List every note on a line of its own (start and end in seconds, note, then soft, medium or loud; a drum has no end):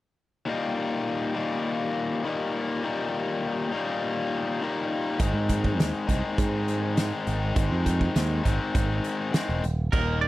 0.46 1.38 D#2 medium
0.46 1.33 A#2 medium
0.46 1.36 D#3 medium
0.46 1.35 G3 medium
0.46 1.35 A#3 medium
0.46 1.34 D#4 medium
1.35 2.22 D#2 medium
1.35 2.23 A#2 medium
1.35 2.23 D#3 medium
1.35 2.23 G3 medium
1.35 2.23 A#3 medium
1.35 2.27 D#4 medium
2.23 2.81 D#2 medium
2.23 2.82 A#2 medium
2.23 2.82 D#3 medium
2.23 2.82 G3 medium
2.23 2.83 A#3 medium
2.23 2.86 D#4 medium
2.82 3.70 D#2 medium
2.82 3.71 A#2 medium
2.82 3.71 D#3 medium
2.82 3.71 G3 medium
2.82 3.71 A#3 medium
2.82 3.72 D#4 medium
3.72 4.59 D#2 medium
3.72 4.60 A#2 medium
3.72 4.60 D#3 medium
3.72 4.60 G3 medium
3.72 4.60 A#3 medium
3.72 4.64 D#4 medium
4.60 5.18 D#2 medium
4.60 5.19 A#2 medium
4.60 5.19 D#3 medium
4.60 5.20 G3 medium
4.60 5.20 A#3 medium
4.60 5.22 D#4 medium
5.19 5.32 G#1 medium
5.19 6.11 G#2 medium
5.19 6.07 D#3 medium
5.19 6.09 G#3 medium
5.19 6.08 C4 medium
5.19 6.07 D#4 medium
5.19 kick medium
5.19 closed hi-hat medium
5.34 5.79 G#2 medium
5.49 kick medium
5.49 closed hi-hat soft
5.64 kick medium
5.79 5.91 D#2 medium
5.79 snare medium
5.79 closed hi-hat medium
6.07 6.21 C2 medium
6.07 6.95 G#2 medium
6.07 6.97 D#3 medium
6.07 6.96 G#3 medium
6.07 6.96 C4 medium
6.07 7.00 D#4 medium
6.07 kick medium
6.07 closed hi-hat medium
6.38 7.11 G#2 medium
6.38 kick medium
6.38 closed hi-hat medium
6.68 closed hi-hat medium
6.97 7.53 G#2 medium
6.97 7.54 D#3 medium
6.97 7.55 G#3 medium
6.97 7.56 C4 medium
6.97 7.58 D#4 medium
6.97 snare medium
6.97 closed hi-hat medium
7.27 7.52 G#1 medium
7.27 closed hi-hat medium
7.54 7.69 G#1 medium
7.54 8.43 G#2 medium
7.54 8.43 D#3 medium
7.54 8.43 G#3 medium
7.54 8.43 C4 medium
7.54 8.42 D#4 medium
7.54 kick loud
7.54 closed hi-hat medium
7.71 8.08 F2 medium
7.86 kick medium
7.86 closed hi-hat medium
8.01 kick medium
8.16 8.40 D#2 medium
8.16 snare medium
8.16 closed hi-hat medium
8.43 8.58 G#1 medium
8.43 9.31 G#2 medium
8.43 9.33 D#3 medium
8.43 9.32 G#3 medium
8.43 9.32 C4 medium
8.43 9.31 D#4 medium
8.43 kick medium
8.43 closed hi-hat medium
8.75 8.99 G#1 medium
8.75 kick medium
8.75 closed hi-hat medium
9.04 closed hi-hat soft
9.32 9.61 G#2 medium
9.32 9.62 D#3 medium
9.32 9.62 G#3 medium
9.32 9.62 C4 medium
9.32 9.63 D#4 medium
9.32 snare medium
9.32 closed hi-hat medium
9.49 9.61 E1 medium
9.64 9.88 D#1 medium
9.64 closed hi-hat medium
9.92 10.28 D#1 medium
9.92 10.28 D#2 medium
9.92 10.28 D#3 medium
9.92 10.21 A#4 medium
9.92 kick loud
9.92 crash medium
10.21 10.28 D5 medium